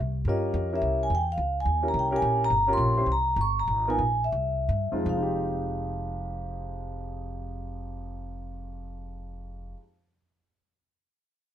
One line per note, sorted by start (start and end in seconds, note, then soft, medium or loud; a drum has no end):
0.00 0.24 C2 medium
0.25 0.53 G2 medium
0.25 0.69 C#4 medium
0.25 0.69 F4 medium
0.25 0.69 G4 medium
0.25 0.69 A#4 medium
0.29 0.70 D#5 medium
0.54 0.81 F2 medium
0.73 1.09 C#4 medium
0.73 1.09 E4 medium
0.73 1.09 G4 medium
0.73 1.09 A#4 medium
0.73 1.00 E5 medium
0.82 1.09 C2 medium
1.03 1.07 G#5 medium
1.10 1.37 E2 medium
1.15 1.30 G5 medium
1.32 1.56 F5 medium
1.37 1.65 C#2 medium
1.60 1.84 G#5 medium
1.65 1.93 D#2 medium
1.82 2.09 C#4 medium
1.82 2.10 E4 medium
1.82 2.10 G4 medium
1.82 2.10 A#4 medium
1.88 1.96 A#5 medium
1.94 2.21 C2 medium
1.99 2.15 G5 medium
2.11 2.48 C#4 medium
2.11 2.49 E4 medium
2.11 2.49 G4 medium
2.11 2.49 A#4 medium
2.16 2.40 G#5 medium
2.22 2.49 A#1 medium
2.45 2.68 A#5 medium
2.50 2.77 G1 medium
2.67 2.94 C#4 medium
2.67 2.95 F4 medium
2.67 2.95 G4 medium
2.67 2.95 A#4 medium
2.73 3.11 C6 medium
2.77 3.06 A#1 medium
2.97 3.07 C#4 medium
2.97 3.07 E4 medium
2.97 3.07 G4 medium
2.97 3.07 C5 medium
3.06 3.35 C2 medium
3.12 3.40 A#5 medium
3.36 3.66 G1 medium
3.41 3.48 C#6 loud
3.59 3.87 A#5 medium
3.67 3.98 G#1 medium
3.88 3.99 B3 medium
3.88 3.99 D#4 medium
3.88 3.99 F4 medium
3.88 3.99 A#4 medium
3.88 4.22 G#5 medium
3.98 4.31 A#1 medium
4.24 4.90 E5 medium
4.32 4.67 C2 medium
4.69 4.90 G2 medium
4.91 4.96 F2 medium
4.91 5.08 G#3 medium
4.91 5.44 C4 medium
4.91 5.15 D#4 medium
4.91 5.44 F4 medium
4.91 muted upright bass stroke soft
4.97 9.73 F2 medium
5.03 9.73 F1 medium
5.03 9.76 F3 medium
5.09 9.79 G#3 medium
5.09 9.75 F5 medium
5.16 9.82 D#4 medium
5.22 9.85 G4 medium